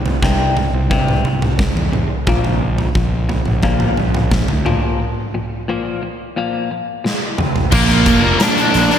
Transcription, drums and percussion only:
0.06 floor tom
0.23 kick, snare
0.57 floor tom
0.91 kick, floor tom
1.08 floor tom, mid tom
1.25 floor tom
1.42 floor tom, mid tom
1.59 kick, snare
1.77 floor tom
1.93 mid tom
2.27 kick, floor tom
2.44 floor tom
2.78 floor tom
2.95 kick
3.29 floor tom
3.46 mid tom
3.63 kick, floor tom
3.80 floor tom, mid tom
3.97 floor tom
4.14 floor tom, mid tom
4.31 kick, snare
4.48 floor tom
4.66 mid tom
7.06 snare
7.38 mid tom
7.56 floor tom
7.72 kick, crash
7.89 snare, closed hi-hat
8.06 kick, closed hi-hat
8.40 snare, closed hi-hat
8.58 closed hi-hat
8.74 closed hi-hat
8.91 closed hi-hat

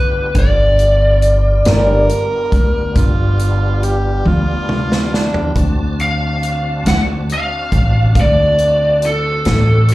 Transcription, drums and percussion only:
0.35 kick, closed hi-hat
0.79 closed hi-hat
1.22 closed hi-hat
1.65 snare, closed hi-hat
2.09 closed hi-hat
2.52 kick, closed hi-hat
2.96 kick, closed hi-hat
3.39 closed hi-hat
3.83 closed hi-hat
4.26 high tom
4.69 mid tom
4.92 snare
5.14 snare
5.34 floor tom
5.56 kick, closed hi-hat
5.99 closed hi-hat
6.43 closed hi-hat
6.86 snare, closed hi-hat
7.29 closed hi-hat
7.72 kick, closed hi-hat
8.15 kick, closed hi-hat
8.58 closed hi-hat
9.02 closed hi-hat
9.45 snare, closed hi-hat
9.88 closed hi-hat

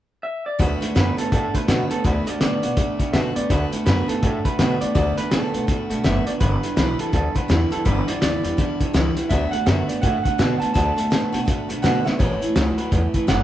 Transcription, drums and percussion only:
0.60 kick, closed hi-hat
0.82 closed hi-hat
0.96 snare, closed hi-hat
1.18 closed hi-hat
1.32 kick, closed hi-hat
1.55 kick, closed hi-hat
1.68 snare, closed hi-hat
1.91 closed hi-hat
2.05 kick, closed hi-hat
2.27 closed hi-hat
2.41 snare, closed hi-hat
2.63 closed hi-hat
2.77 kick, closed hi-hat
3.00 kick, closed hi-hat
3.14 snare, closed hi-hat
3.36 closed hi-hat
3.50 kick, closed hi-hat
3.73 closed hi-hat
3.87 snare, closed hi-hat
4.09 closed hi-hat
4.23 kick, closed hi-hat
4.45 kick, closed hi-hat
4.59 snare, closed hi-hat
4.81 closed hi-hat
4.95 kick, closed hi-hat
5.18 closed hi-hat
5.32 snare, closed hi-hat
5.54 closed hi-hat
5.68 kick, closed hi-hat
5.91 closed hi-hat
6.04 snare, closed hi-hat
6.27 closed hi-hat
6.41 kick, closed hi-hat
6.63 closed hi-hat
6.77 snare, closed hi-hat
6.99 closed hi-hat
7.13 kick, closed hi-hat
7.36 kick, closed hi-hat
7.50 snare, closed hi-hat
7.72 closed hi-hat
7.86 kick, closed hi-hat
8.08 closed hi-hat
8.22 snare, closed hi-hat
8.45 closed hi-hat
8.58 kick, closed hi-hat
8.81 kick, closed hi-hat
8.94 snare, closed hi-hat
9.17 closed hi-hat
9.31 kick, closed hi-hat
9.53 closed hi-hat
9.67 snare, closed hi-hat
9.89 closed hi-hat
10.03 kick, closed hi-hat
10.25 kick, closed hi-hat
10.39 snare, closed hi-hat
10.62 closed hi-hat
10.75 kick, closed hi-hat
10.98 closed hi-hat
11.12 snare, closed hi-hat
11.34 closed hi-hat
11.48 kick, closed hi-hat
11.70 closed hi-hat
11.84 snare, closed hi-hat
12.06 snare
12.20 kick, closed hi-hat
12.42 closed hi-hat
12.56 snare, closed hi-hat
12.78 closed hi-hat
12.92 kick, closed hi-hat
13.14 kick, closed hi-hat
13.28 snare, closed hi-hat

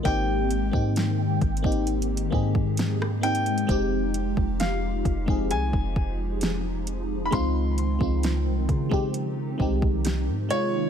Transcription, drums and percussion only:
0.05 kick, closed hi-hat
0.51 closed hi-hat
0.73 kick
0.96 snare, closed hi-hat
1.42 kick, closed hi-hat
1.57 closed hi-hat
1.64 kick
1.72 closed hi-hat
1.87 closed hi-hat
2.02 closed hi-hat
2.17 closed hi-hat
2.32 kick
2.55 kick
2.77 snare, closed hi-hat
3.02 cross-stick
3.23 closed hi-hat, open hi-hat
3.35 closed hi-hat
3.46 closed hi-hat
3.58 closed hi-hat
3.69 kick, closed hi-hat
4.14 closed hi-hat
4.37 kick
4.60 snare, closed hi-hat
5.05 kick, closed hi-hat
5.28 kick
5.51 closed hi-hat
5.73 kick
5.96 kick
6.41 snare, closed hi-hat
6.87 closed hi-hat
7.32 kick, closed hi-hat
7.78 closed hi-hat
8.01 kick
8.23 snare, closed hi-hat
8.69 kick, closed hi-hat
8.92 kick
9.14 closed hi-hat
9.60 kick
9.82 kick
10.05 snare, closed hi-hat
10.50 closed hi-hat

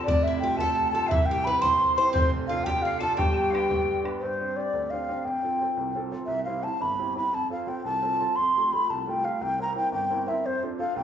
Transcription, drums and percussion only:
0.08 bodhran
0.26 bodhran
0.59 bodhran
0.78 bodhran
1.11 bodhran
1.30 bodhran
1.63 bodhran
1.83 bodhran
2.15 bodhran
2.35 bodhran
2.67 bodhran
2.86 bodhran
3.19 bodhran
3.55 bodhran
3.71 bodhran
3.89 bodhran
4.05 bodhran

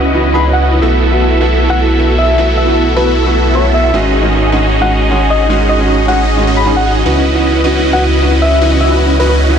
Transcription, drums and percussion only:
0.04 closed hi-hat
0.24 closed hi-hat
0.43 closed hi-hat
0.63 closed hi-hat
0.68 closed hi-hat
0.82 closed hi-hat
1.02 closed hi-hat
1.21 closed hi-hat
1.31 closed hi-hat
1.41 closed hi-hat
1.60 closed hi-hat
1.80 closed hi-hat
1.99 closed hi-hat
2.19 closed hi-hat
2.24 closed hi-hat
2.38 closed hi-hat
2.58 closed hi-hat
2.77 closed hi-hat
2.87 closed hi-hat
2.97 closed hi-hat
3.16 closed hi-hat
3.35 closed hi-hat
3.55 closed hi-hat
3.74 closed hi-hat
3.79 closed hi-hat
3.94 closed hi-hat
4.13 closed hi-hat
4.33 closed hi-hat
4.43 closed hi-hat
4.52 closed hi-hat
4.72 closed hi-hat
4.91 closed hi-hat
5.11 closed hi-hat
5.30 closed hi-hat
5.35 closed hi-hat
5.50 closed hi-hat
5.69 closed hi-hat
5.89 closed hi-hat
5.99 closed hi-hat
6.08 closed hi-hat
6.28 closed hi-hat
6.47 closed hi-hat
6.67 closed hi-hat
6.86 closed hi-hat
6.91 closed hi-hat
7.06 closed hi-hat
7.25 closed hi-hat
7.45 closed hi-hat
7.55 closed hi-hat
7.64 closed hi-hat
7.84 closed hi-hat
8.03 closed hi-hat
8.23 closed hi-hat
8.42 closed hi-hat
8.47 closed hi-hat
8.62 closed hi-hat
8.81 closed hi-hat
9.00 closed hi-hat
9.10 closed hi-hat
9.20 closed hi-hat
9.39 closed hi-hat

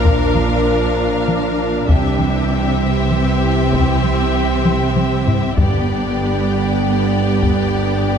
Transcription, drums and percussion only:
0.05 taiko
0.36 taiko mid
1.28 taiko mid
1.89 taiko
2.19 taiko mid
3.12 taiko mid
3.73 taiko
4.04 taiko mid
4.65 taiko mid
4.96 taiko mid
5.27 taiko low
5.57 taiko
7.42 taiko

